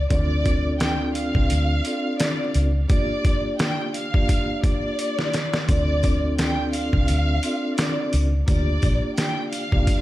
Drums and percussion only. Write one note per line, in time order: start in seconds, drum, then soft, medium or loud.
0.10 kick loud
0.10 closed hi-hat medium
0.46 kick medium
0.46 closed hi-hat medium
0.80 snare loud
0.80 closed hi-hat medium
1.15 closed hi-hat medium
1.35 kick medium
1.50 closed hi-hat loud
1.85 closed hi-hat medium
2.20 snare loud
2.20 closed hi-hat loud
2.54 closed hi-hat medium
2.90 kick loud
2.90 closed hi-hat medium
3.25 kick medium
3.25 closed hi-hat medium
3.59 snare loud
3.59 closed hi-hat medium
3.94 closed hi-hat medium
4.14 kick medium
4.29 kick medium
4.29 closed hi-hat loud
4.64 kick loud
4.64 closed hi-hat medium
4.99 closed hi-hat loud
5.19 snare medium
5.34 snare medium
5.34 closed hi-hat medium
5.54 snare medium
5.69 kick loud
5.69 closed hi-hat medium
5.69 sleigh bells medium
6.03 kick medium
6.03 closed hi-hat medium
6.03 sleigh bells medium
6.38 snare loud
6.38 closed hi-hat medium
6.38 sleigh bells soft
6.73 closed hi-hat medium
6.73 sleigh bells medium
6.93 kick medium
7.08 closed hi-hat loud
7.08 sleigh bells soft
7.43 closed hi-hat medium
7.43 sleigh bells medium
7.78 snare loud
7.78 closed hi-hat loud
7.78 sleigh bells soft
8.13 closed hi-hat medium
8.13 sleigh bells medium
8.48 kick loud
8.48 closed hi-hat medium
8.48 sleigh bells medium
8.82 kick medium
8.82 closed hi-hat medium
8.82 sleigh bells medium
9.18 snare loud
9.18 closed hi-hat medium
9.18 sleigh bells medium
9.53 closed hi-hat medium
9.53 sleigh bells medium
9.72 kick medium
9.87 kick medium
9.87 closed hi-hat loud
9.87 sleigh bells soft